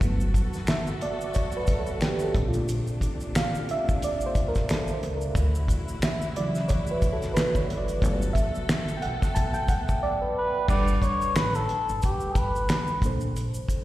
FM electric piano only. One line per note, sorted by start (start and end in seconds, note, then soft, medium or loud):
0.03 2.32 F#3 medium
0.03 2.32 A3 medium
0.03 2.32 B3 medium
0.69 1.03 E5 medium
1.02 1.36 D5 medium
1.34 1.58 C#5 medium
1.57 1.80 B4 medium
1.79 2.02 A4 medium
2.01 2.24 G4 medium
2.24 2.45 A4 medium
2.37 2.82 D3 soft
2.37 2.83 A3 soft
2.37 2.83 C4 medium
2.48 2.62 F4 medium
3.37 3.70 F5 medium
3.71 4.04 E5 loud
4.04 4.26 D5 medium
4.26 4.48 C5 medium
4.48 4.70 A#4 medium
4.70 4.92 A4 medium
4.93 5.15 C5 medium
5.16 5.46 A#4 medium
6.04 6.37 E5 medium
6.37 7.33 C#3 medium
6.37 7.32 E3 medium
6.37 7.32 F#3 medium
6.37 6.51 D5 medium
6.68 6.91 C#5 medium
6.91 7.14 B4 medium
7.13 7.36 A4 medium
7.34 7.57 B4 loud
7.56 7.80 C#5 medium
7.77 8.09 D5 medium
8.01 8.98 F#3 medium
8.01 8.98 A3 medium
8.01 8.98 B3 medium
8.33 8.97 E5 loud
8.97 9.02 G5 medium
9.02 9.36 F#5 medium
9.35 9.54 A5 loud
9.54 9.60 G5 loud
9.69 10.03 F#5 loud
10.03 10.22 D5 loud
10.22 10.52 B4 medium
10.69 12.98 G3 medium
10.69 12.98 D4 medium
10.69 12.99 A4 medium
10.69 13.00 B4 medium
10.69 12.99 F#5 medium
13.03 13.84 C3 medium
13.03 13.84 A#3 soft
13.03 13.84 D4 soft
13.03 13.84 A4 medium
13.03 13.84 C5 medium